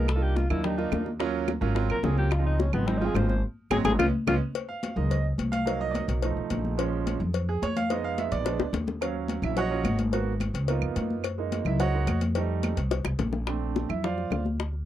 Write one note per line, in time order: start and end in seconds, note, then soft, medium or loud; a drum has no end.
0.00 0.45 C2 loud
0.00 0.10 A#4 medium
0.08 0.24 A4 medium
0.08 high bongo medium
0.08 claves medium
0.16 0.40 A#3 medium
0.16 0.40 D4 medium
0.16 0.40 D#4 medium
0.16 0.40 F4 medium
0.22 0.38 G4 medium
0.22 high conga soft
0.36 0.50 F4 medium
0.36 high bongo medium
0.36 high conga loud
0.50 0.89 D#2 loud
0.50 0.60 A#3 medium
0.50 0.60 D4 medium
0.50 0.60 D#4 medium
0.50 0.67 E4 medium
0.50 0.60 F4 medium
0.50 high bongo soft
0.50 high conga soft
0.50 low conga medium
0.50 claves medium
0.64 0.74 A#3 medium
0.64 0.74 D4 medium
0.64 0.74 D#4 medium
0.64 1.07 D#4 medium
0.64 0.74 G4 medium
0.64 high bongo medium
0.64 high conga soft
0.64 low conga medium
0.78 1.07 A#3 medium
0.78 1.07 D4 medium
0.78 1.07 D#4 medium
0.78 1.08 F4 medium
0.78 high bongo soft
0.78 high conga soft
0.91 1.56 D#2 loud
0.91 high bongo soft
0.91 low bongo medium
0.91 high conga medium
0.91 claves medium
1.06 high bongo soft
1.06 high conga medium
1.19 1.49 F#3 loud
1.19 1.49 A#3 medium
1.19 1.49 C#4 loud
1.19 1.49 F4 loud
1.19 high bongo medium
1.19 high conga soft
1.34 high conga soft
1.48 high bongo medium
1.48 high conga medium
1.48 claves medium
1.61 1.88 G#1 loud
1.61 1.71 F#3 medium
1.61 1.71 A#3 medium
1.61 1.72 C#4 medium
1.61 1.72 F4 loud
1.61 high bongo soft
1.75 1.95 F#3 medium
1.75 1.95 A#3 medium
1.75 1.95 C4 medium
1.75 1.95 F4 loud
1.75 high bongo medium
1.75 high conga soft
1.90 2.02 A#1 medium
1.90 2.07 A#4 loud
1.90 high bongo soft
1.90 high conga soft
1.90 claves medium
2.03 2.68 C#2 loud
2.03 2.28 F#3 medium
2.03 2.28 A#3 medium
2.03 2.28 C4 medium
2.03 2.28 F4 medium
2.03 2.18 G#4 medium
2.03 high bongo soft
2.03 low bongo medium
2.03 high conga medium
2.18 2.34 G4 medium
2.18 high bongo soft
2.18 high conga medium
2.31 2.46 F4 medium
2.31 high bongo medium
2.31 claves medium
2.38 2.63 F3 medium
2.38 2.63 G#3 medium
2.38 2.63 C4 medium
2.38 2.63 D#4 medium
2.46 2.62 D#4 medium
2.46 high conga soft
2.60 2.73 C#4 medium
2.60 high bongo medium
2.60 high conga loud
2.73 3.12 G#1 loud
2.73 2.83 F3 medium
2.73 2.83 G#3 medium
2.73 2.89 B3 medium
2.73 2.83 C4 medium
2.73 2.84 D#4 medium
2.73 high bongo soft
2.73 high conga soft
2.73 low conga loud
2.73 claves medium
2.87 2.97 F3 medium
2.87 2.97 G#3 medium
2.87 2.99 C4 medium
2.87 2.98 C4 medium
2.87 2.98 D#4 medium
2.87 high bongo medium
2.87 high conga soft
2.87 low conga medium
2.98 3.30 F3 medium
2.98 3.30 G#3 medium
2.98 3.31 C4 medium
2.98 3.07 D#4 medium
2.98 3.31 F4 medium
2.98 high conga soft
3.02 high bongo soft
3.06 3.17 G#4 loud
3.14 3.41 G#1 loud
3.14 3.29 C5 medium
3.14 high bongo soft
3.14 low bongo loud
3.14 high conga medium
3.14 claves medium
3.29 3.42 C5 medium
3.29 high bongo soft
3.29 high conga medium
3.70 3.81 G#1 loud
3.70 3.80 F#3 loud
3.70 3.80 G#3 loud
3.70 3.80 C4 loud
3.70 3.78 G#4 medium
3.70 low bongo loud
3.70 high conga loud
3.70 claves loud
3.84 3.95 G#1 loud
3.84 3.94 F#3 medium
3.84 3.94 G#3 medium
3.84 3.94 C4 medium
3.84 3.92 G#4 loud
3.84 low bongo loud
3.84 high conga loud
3.84 claves loud
3.99 4.10 C#2 loud
3.99 4.08 G#3 loud
3.99 4.08 B3 loud
3.99 4.08 C#4 loud
3.99 4.06 F4 loud
3.99 low bongo loud
3.99 high conga loud
3.99 claves loud
4.27 4.37 C#2 loud
4.27 4.36 G#3 loud
4.27 4.36 B3 loud
4.27 4.36 C#4 loud
4.27 4.35 F4 loud
4.27 low bongo loud
4.27 high conga loud
4.27 claves loud
4.55 cowbell loud
4.55 high conga soft
4.69 4.95 F5 medium
4.69 high conga soft
4.83 cowbell medium
4.83 high conga medium
4.96 5.36 C#2 loud
4.96 5.15 G#3 soft
4.96 5.15 A#3 soft
4.96 5.16 D#4 soft
4.96 5.09 D#5 medium
4.96 high conga soft
4.96 low conga medium
5.11 5.24 D#5 medium
5.11 cowbell medium
5.11 high conga soft
5.24 high conga soft
5.38 6.03 C2 medium
5.38 cowbell medium
5.38 high conga medium
5.52 5.78 F5 loud
5.52 cowbell medium
5.52 high conga medium
5.66 6.19 F#3 medium
5.66 6.20 A#3 medium
5.66 6.20 D#4 medium
5.66 cowbell loud
5.81 5.94 D#5 medium
5.81 high conga soft
5.91 5.93 D5 medium
5.91 high conga loud
5.95 6.04 D#5 medium
5.95 cowbell medium
6.08 6.34 B1 loud
6.08 cowbell medium
6.08 high conga soft
6.22 6.75 F3 medium
6.22 6.76 A3 soft
6.22 6.76 D#4 medium
6.22 cowbell loud
6.22 high conga soft
6.37 6.50 B1 medium
6.37 high conga soft
6.50 7.15 A#1 loud
6.50 cowbell medium
6.50 high conga medium
6.65 high conga medium
6.78 7.18 F3 medium
6.78 7.18 G#3 medium
6.78 7.19 C#4 medium
6.78 cowbell loud
6.93 high conga soft
7.07 cowbell medium
7.07 high conga loud
7.20 7.59 F2 loud
7.20 high conga soft
7.20 low conga medium
7.34 cowbell loud
7.34 high conga soft
7.48 7.62 G#4 medium
7.48 high conga soft
7.62 8.27 F2 medium
7.62 7.76 C#5 medium
7.62 cowbell medium
7.62 high conga loud
7.76 7.90 F5 loud
7.76 cowbell medium
7.76 high conga medium
7.90 8.43 G#3 medium
7.90 8.44 B3 medium
7.90 8.44 D#4 medium
7.90 8.04 D#5 medium
7.90 cowbell loud
7.90 high conga soft
8.04 8.18 F5 loud
8.04 high conga soft
8.18 8.32 E5 medium
8.18 cowbell medium
8.18 high conga medium
8.32 8.58 A#1 loud
8.32 8.71 D5 medium
8.32 cowbell medium
8.32 high conga soft
8.45 8.64 G#3 medium
8.45 8.64 B3 medium
8.45 8.65 D4 medium
8.45 cowbell loud
8.45 high bongo medium
8.45 high conga soft
8.59 8.72 D2 medium
8.59 high bongo loud
8.59 high conga soft
8.73 9.38 D#2 loud
8.73 cowbell medium
8.73 low bongo medium
8.73 high conga loud
8.87 low bongo medium
8.87 high conga medium
9.01 9.69 F#3 medium
9.01 9.70 C#4 medium
9.01 10.09 F5 medium
9.01 cowbell loud
9.01 claves medium
9.15 high conga soft
9.28 cowbell medium
9.28 high conga loud
9.42 9.82 A#1 loud
9.42 9.58 E4 medium
9.42 9.57 E5 medium
9.42 high conga soft
9.42 low conga medium
9.42 claves medium
9.57 9.97 F#4 medium
9.57 9.96 C#5 medium
9.57 9.97 D#5 medium
9.57 9.96 F#5 loud
9.57 cowbell loud
9.57 high conga soft
9.71 9.83 F#3 medium
9.71 9.84 C#4 soft
9.71 9.84 F4 medium
9.84 10.49 G#1 loud
9.84 cowbell medium
9.84 high conga medium
9.84 claves medium
9.99 cowbell medium
9.99 high conga medium
10.13 10.31 A#3 medium
10.13 10.32 B3 medium
10.13 10.32 F#4 medium
10.13 cowbell loud
10.27 high conga soft
10.40 cowbell medium
10.40 high conga loud
10.40 claves medium
10.54 10.80 C#2 loud
10.54 cowbell medium
10.54 high conga soft
10.68 11.21 A#3 medium
10.68 11.22 B3 medium
10.68 11.22 D#4 medium
10.68 11.22 F4 medium
10.68 cowbell loud
10.68 high conga soft
10.81 10.95 F2 medium
10.81 high conga soft
10.81 claves medium
10.96 11.60 F#2 loud
10.96 cowbell medium
10.96 high conga medium
11.10 high conga medium
11.24 cowbell loud
11.24 high conga soft
11.24 claves medium
11.38 11.92 G#3 medium
11.38 11.93 A#3 medium
11.38 11.93 D#4 medium
11.38 high conga soft
11.52 cowbell medium
11.52 high conga loud
11.65 12.04 C#2 loud
11.65 11.80 E4 medium
11.65 11.80 E5 medium
11.65 high conga soft
11.65 low conga loud
11.65 claves medium
11.80 12.19 F#4 medium
11.80 12.19 C#5 medium
11.80 12.19 D#5 medium
11.80 12.19 F#5 medium
11.80 cowbell loud
11.80 high conga soft
11.94 12.06 G#3 medium
11.94 12.07 A#3 soft
11.94 12.07 D#4 medium
11.94 high conga soft
12.07 12.72 F2 loud
12.07 cowbell medium
12.07 high conga medium
12.07 claves medium
12.21 cowbell medium
12.21 high conga medium
12.35 12.75 G3 medium
12.35 12.76 A3 medium
12.35 12.76 D#4 medium
12.35 cowbell loud
12.50 high conga soft
12.63 cowbell medium
12.63 high conga loud
12.63 claves medium
12.77 13.03 C2 loud
12.77 cowbell medium
12.77 high conga soft
12.91 cowbell loud
12.91 high bongo medium
12.91 high conga soft
13.05 13.18 C2 medium
13.05 high bongo medium
13.05 high conga soft
13.05 claves medium
13.19 13.84 A#1 loud
13.19 cowbell medium
13.19 low bongo medium
13.19 high conga medium
13.33 low bongo medium
13.47 13.87 A3 medium
13.47 13.87 C4 medium
13.47 13.88 D4 medium
13.47 high bongo medium
13.47 high conga soft
13.47 claves medium
13.62 high conga soft
13.76 high bongo medium
13.76 high conga medium
13.89 14.28 F2 medium
13.89 14.03 E4 medium
13.89 14.03 E5 medium
13.89 high bongo soft
13.89 high conga soft
13.89 low conga medium
13.89 claves medium
14.04 14.43 F4 medium
14.04 14.43 C5 medium
14.04 14.43 D5 medium
14.04 14.43 F5 medium
14.04 high bongo medium
14.04 high conga soft
14.04 low conga medium
14.18 high bongo soft
14.18 high conga soft
14.30 14.85 D2 medium
14.30 high bongo soft
14.30 low bongo medium
14.30 high conga medium
14.30 claves medium
14.45 high bongo soft
14.45 high conga medium
14.60 high bongo medium
14.73 high conga soft